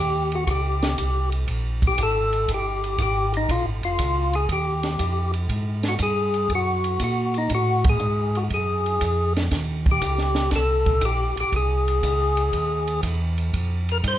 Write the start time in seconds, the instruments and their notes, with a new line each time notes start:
Already playing: tonewheel organ D#2 G4
0.32 tonewheel organ F#4, ride
0.47 tonewheel organ C#2 F#4 G4, kick, ride
0.82 snare, ride
0.97 tonewheel organ C2, kick, hi-hat pedal, ride
1.32 ride
1.47 tonewheel organ A#1, kick, ride
1.82 kick, ride
1.87 tonewheel organ G4
1.97 tonewheel organ G#1, kick, hi-hat pedal, ride
2.03 tonewheel organ A4
2.33 ride
2.48 tonewheel organ G1, kick, ride
2.54 tonewheel organ G4
2.84 ride
2.98 tonewheel organ G#1, kick, hi-hat pedal, ride
3.02 tonewheel organ G4
3.34 tonewheel organ D#4, ride
3.49 tonewheel organ A#1 F4, kick, ride
3.64 tonewheel organ G#1
3.81 tonewheel organ F1 F4, ride
3.99 tonewheel organ C#2, kick, hi-hat pedal, ride
4.33 tonewheel organ G#4, ride
4.49 tonewheel organ D#2 G4, kick, ride
4.83 snare, ride
4.99 tonewheel organ F2, kick, hi-hat pedal, ride
5.34 ride
5.49 tonewheel organ G#2, kick, ride
5.83 snare, ride
5.88 tonewheel organ F#4
5.99 tonewheel organ G2 G#4, kick, hi-hat pedal, ride
6.34 ride
6.50 tonewheel organ F#2, kick, ride
6.55 tonewheel organ F#4
6.84 ride
7.00 tonewheel organ A#2, kick, hi-hat pedal, ride
7.04 tonewheel organ F#4
7.34 ride
7.38 tonewheel organ D#4
7.50 tonewheel organ A2, kick, ride
7.55 tonewheel organ F#4
7.84 kick, ride
7.89 tonewheel organ G#4
7.99 tonewheel organ G#2, hi-hat pedal
8.35 tonewheel organ F#4, ride
8.50 tonewheel organ F#2 G#4, kick, ride
8.86 ride
9.01 tonewheel organ F2, kick, hi-hat pedal, ride
9.37 snare, ride
9.51 tonewheel organ D#2, kick, snare, ride
9.86 kick, ride
9.91 tonewheel organ G4
10.01 tonewheel organ C#2, kick, hi-hat pedal, ride
10.18 snare
10.35 snare, ride
10.51 tonewheel organ C2, kick, snare, ride
10.56 tonewheel organ A4
10.86 kick, ride
11.01 tonewheel organ A#1, kick, hi-hat pedal, ride
11.05 tonewheel organ G4
11.36 tonewheel organ A#1 G4, ride
11.52 tonewheel organ C2 G#4, kick, ride
11.88 ride
12.03 tonewheel organ C#2, kick, hi-hat pedal, ride
12.37 ride
12.53 tonewheel organ D#2, kick, ride
12.87 ride
13.03 tonewheel organ E2, kick, hi-hat pedal, ride
13.38 ride
13.53 tonewheel organ F2, kick, ride
13.89 tonewheel organ A#4, ride
14.03 tonewheel organ G2, kick, hi-hat pedal, ride
14.08 tonewheel organ C5